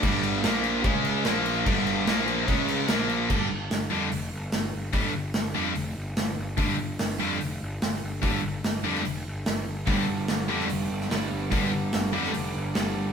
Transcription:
<<
  \new Staff \with { instrumentName = "Distorted electric guitar" } { \clef bass \time 4/4 \key bes \lydian \tempo 4 = 146 <g, d g>4 <bes, f bes>4 <cis gis cis'>4 <bes, f bes>4 | <g, d g>4 <bes, f bes>4 <cis gis cis'>4 <bes, f bes>4 | <g, d g>8 r4 <g, d g>8 r2 | <g, d g>8 r4 <g, d g>8 r2 |
<g, d g>8 r4 <g, d g>8 r2 | <g, d g>8 r4 <g, d g>8 r2 | <g, d g>8 r4 <g, d g>8 r2 | <g, d g>8 r4 <g, d g>8 r2 | }
  \new Staff \with { instrumentName = "Overdriven electric guitar" } { \clef bass \time 4/4 \key bes \lydian <g, d g>4 <bes, f bes>4 <cis gis cis'>4 <bes, f bes>4 | <g, d g>4 <bes, f bes>4 <cis gis cis'>4 <bes, f bes>4 | <g, d g>8 r4 <g, d g>8 r2 | <g, d g>8 r4 <g, d g>8 r2 |
<g, d g>8 r4 <g, d g>8 r2 | <g, d g>8 r4 <g, d g>8 r2 | <g, d g>8 r4 <g, d g>8 r2 | <g, d g>8 r4 <g, d g>8 r2 | }
  \new Staff \with { instrumentName = "Overdriven electric guitar" } { \clef bass \time 4/4 \key bes \lydian <g, d g>4 <bes, f bes>4 <cis gis cis'>4 <bes, f bes>4 | <g, d g>4 <bes, f bes>4 <cis gis cis'>4 <bes, f bes>4 | r1 | r1 |
r1 | r1 | <g, d g>4. <g, d g>4. <g, d g>4 | <g, d g>4. <g, d g>4. <g, d g>4 | }
  \new Staff \with { instrumentName = "Picked electric bass" } { \clef bass \time 4/4 \key bes \lydian g,,4 bes,,4 cis,4 bes,,4 | g,,4 bes,,4 cis,4 bes,,4 | g,,8 g,,8 g,,8 f,8 f,,8 g,,8 g,,8 g,,8 | g,,8 g,,8 g,,8 f,8 f,,8 g,,8 g,,8 g,,8 |
g,,8 g,,8 g,,8 f,8 f,,8 g,,8 g,,8 g,,8 | g,,8 g,,8 g,,8 f,8 f,,8 g,,8 g,,8 g,,8 | g,,8 g,,8 g,,8 f,8 f,,8 g,,8 g,,8 g,,8 | g,,8 g,,8 g,,8 f,8 f,,8 g,,8 g,,8 g,,8 | }
  \new DrumStaff \with { instrumentName = "Drums" } \drummode { \time 4/4 <cymc bd>8 cymc8 <cymc sn>8 cymc8 <cymc bd>8 cymc8 <cymc sn>8 cymc8 | <cymc bd>8 cymc8 <cymc sn>8 cymc8 <cymc bd>8 cymc8 <cymc sn>8 cymc8 | <cymc bd>4 <hho sn>4 hho4 <hho sn>4 | <hho bd>4 <hho sn>4 hho4 <hho sn>4 |
<hho bd>4 <hho sn>4 hho4 <hho sn>4 | <hho bd>4 <hho sn>8. sn16 hho4 <hho sn>4 | <hho bd>4 <hho sn>8. sn16 hho8. sn16 <hho sn>4 | <hho bd>4 <hho sn>8. sn16 hho4 <hho sn>4 | }
>>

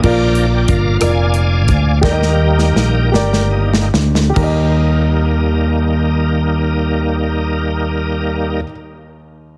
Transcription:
<<
  \new Staff \with { instrumentName = "Grand piano" } { \time 6/8 \key ees \major \tempo 4. = 46 <f' bes' d''>4 r8 <f' bes' d''>4 r8 | <g' bes' d'' ees''>4 r8 <g' bes' d''>4 r8 | <g' bes' ees''>2.~ | <g' bes' ees''>2. | }
  \new Staff \with { instrumentName = "Grand piano" } { \clef bass \time 6/8 \key ees \major bes,4. r4. | ees4. r4. | ees,2.~ | ees,2. | }
  \new Staff \with { instrumentName = "Tonewheel organ" } { \time 6/8 \key ees \major << { g''8. g''16 f''8 aes''4. | g''2 r4 | <g bes ees' bes'>2.~ | <g bes ees' bes'>2. | } \\ { <bes' d''>4. <d'' f''>4. | bes'2 r4 | r2. | r2. | } >> }
  \new Staff \with { instrumentName = "Tonewheel organ" } { \time 6/8 \key ees \major <f bes d'>8 r2 r8 | <g bes ees'>4. r8 <g bes ees'>8 r8 | r2. | r2. | }
  \new Staff \with { instrumentName = "Fingered electric bass" } { \clef bass \time 6/8 \key ees \major bes,,4 g,,8 f,,4 d,8 | ees,4 bes,,8 g,,4 d,8 | ees,2.~ | ees,2. | }
  \new DrumStaff \with { instrumentName = "Drums" } \drummode { \time 6/8 <cymc bd>8 hh8 <hh bd>8 <hh ss>8 hh8 <hh bd>8 | <bd sn>16 sn8 sn16 sn8 sn16 sn8 sn16 sn16 sn16 | <cymc bd>4. r4. | r4. r4. | }
>>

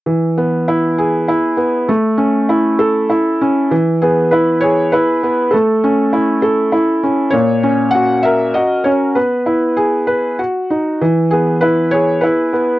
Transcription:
\new Staff \with { instrumentName = "Felt piano" } { \time 3/4 \key e \major \tempo 4 = 99 << { r2. | r2. | r8 gis'8 b'8 cis''8 b'4 | a'2 r4 |
cis''4 fis''8 e''8 dis''8 cis''8 | b'4 r2 | r8 gis'8 b'8 cis''8 b'4 | } \\ { e8 b8 e'8 gis'8 e'8 b8 | a8 cis'8 e'8 a'8 e'8 cis'8 | e8 b8 e'8 gis'8 e'8 b8 | a8 cis'8 e'8 a'8 e'8 cis'8 |
ais,8 cis'8 fis'8 ais'8 fis'8 cis'8 | b8 e'8 gis'8 b'8 fis'8 dis'8 | e8 b8 e'8 gis'8 e'8 b8 | } >> }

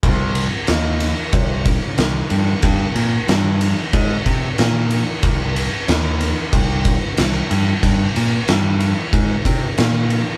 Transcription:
<<
  \new Staff \with { instrumentName = "Picked electric bass" } { \clef bass \time 4/4 \key c \minor \tempo 4 = 92 c,4 ees,4 c,4 c,8 g,8 | g,8 bes,8 g,4 aes,8 c8 bes,4 | c,4 ees,4 c,4 c,8 g,8 | g,8 bes,8 g,4 aes,8 c8 bes,4 | }
  \new DrumStaff \with { instrumentName = "Drums" } \drummode { \time 4/4 <bd cymr>8 cymr8 <cymr sn>8 <cymr sn>8 <bd cymr>8 <bd cymr>8 <cymr sn>8 cymr8 | <bd cymr>8 cymr8 <cymr sn>8 cymr8 <bd cymr>8 <bd cymr>8 <cymr sn>8 cymr8 | <bd cymr>8 cymr8 <cymr sn>8 <cymr sn>8 <bd cymr>8 <bd cymr>8 <cymr sn>8 cymr8 | <bd cymr>8 cymr8 <cymr sn>8 cymr8 <bd cymr>8 <bd cymr>8 <cymr sn>8 cymr8 | }
>>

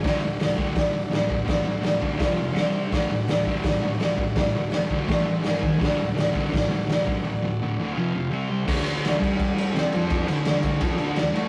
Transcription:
<<
  \new Staff \with { instrumentName = "Transistor combo organ" } { \time 4/4 \key d \mixolydian \tempo 4 = 167 <a' d'' fis''>1~ | <a' d'' fis''>2 <f' c'' f''>4 <g' c'' g''>4 | <a' d'' fis''>1~ | <a' d'' fis''>2 <a' e'' a''>4 <gis' dis'' gis''>4 |
<a' d'' fis''>1~ | <a' d'' fis''>2 <f' c'' f''>4 <g' c'' g''>4 | <a' d'' fis''>1~ | <a' d'' fis''>1 | }
  \new Staff \with { instrumentName = "Distorted electric guitar" } { \clef bass \time 4/4 \key d \mixolydian <d, a, d>8 <d, a,>8 <d, a,>8 <d, a, d>8 <d, a,>8 <d, a,>8 <d, a,>8 <d, a,>8 | <d, a,>8 <d, a,>8 <d, a,>8 <d, a, d>8 <f, c f>8 <f, c>8 <c g c'>8 <c g>8 | <d, a, d>8 <d, a,>8 <d, a,>8 <d, a, d>8 <d, a,>8 <d, a,>8 <d, a,>8 <d, a,>8 | <d, a,>8 <d, a,>8 <d, a,>8 <d, a, d>8 <a, e a>8 <a, e>8 <gis, dis gis>8 <gis, dis>8 |
<d, a, d>8 <d, a,>8 <d, a,>8 <d, a, d>8 <d, a,>8 <d, a,>8 <d, a,>8 <d, a,>8 | <d, a,>8 <d, a,>8 <d, a,>8 <d, a, d>8 <f, c f>8 <f, c>8 <c g c'>8 <c g>8 | <d, d>4. <g, g>4. <c c'>8 <f, f>8~ | <f, f>8 <d, d>4. <f, f>8 <d, d>8 d,8 <a, a>8 | }
  \new DrumStaff \with { instrumentName = "Drums" } \drummode { \time 4/4 <hho bd sn>4 <hho sn>8 bd8 <hho bd sn>4 <hho sn>8 bd8 | <hho bd sn>4 <hho sn>8 bd8 <hho bd sn>4 <hho sn>4 | <hho bd sn>4 <hho sn>8 bd8 <hho bd sn>4 <hho sn>8 bd8 | <hho bd sn>4 <hho sn>8 bd8 <hho bd sn>4 <hho sn>8 bd8 |
<hho bd sn>4 <hho sn>8 bd8 <hho bd sn>4 <hho sn>8 bd8 | r4 r4 r4 r4 | <cymc bd>8 cymr8 <cymr sn>8 <bd cymr>8 <bd cymr>8 cymr8 <cymr sn>8 cymr8 | <bd cymr>8 cymr8 <cymr sn>8 <bd cymr>8 <bd cymr>8 cymr8 <cymr sn>8 cymr8 | }
>>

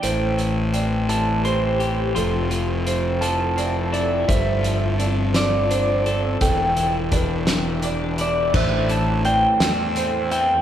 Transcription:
<<
  \new Staff \with { instrumentName = "Electric slide guitar" } { \time 6/8 \key a \minor \tempo 4. = 56 g''4. a''8 c'''4 | c'''4 r8 a''4 d''8 | e''4. d''4. | g''2 r8 d''8 |
e''8 a''8 g''4. g''8 | }
  \new Staff \with { instrumentName = "Felt piano" } { \time 6/8 \key a \minor c''4 d''4 c''4 | a'4 c''4 d''4 | c''4 d''4 c''4 | a'4 b'4 d''4 |
c''4 d''4 c''4 | }
  \new Staff \with { instrumentName = "Ambient pad" } { \time 6/8 \key a \minor << { <a c''>2. | <f a'>2.~ | <f a'>2. | <e g'>2. |
<g a'>2. | } \\ { g'2. | e'2. | c'2. | d'2. |
c'2. | } >> }
  \new Staff \with { instrumentName = "Clean electric guitar" } { \clef bass \time 6/8 \key a \minor a,8 e8 c'8 e8 c'8 g'8 | f8 f8 c'8 f8 c'8 e'8 | g,8 f8 d'8 f8 d'8 a'8 | e,8 e8 d'8 e8 d'8 e'8 |
a,8 e8 c'8 e8 c'8 e'8 | }
  \new Staff \with { instrumentName = "Fingered electric bass" } { \clef bass \time 6/8 \key a \minor a,,2. | f,,2. | g,,2. | e,,2. |
a,,4. e,4. | }
  \new DrumStaff \with { instrumentName = "Drums" } \drummode { \time 6/8 hh8 hh8 hh8 hh8 hh8 hh8 | hh8 hh8 hh8 hh8 hh8 hh8 | <hh bd>8 hh8 hh8 <hh sn>8 hh8 hh8 | <hh bd>8 hh8 <hh bd>8 <hh sn>8 hh8 hh8 |
<cymc bd>8 hh8 hh8 <hh sn>8 hh8 hh8 | }
>>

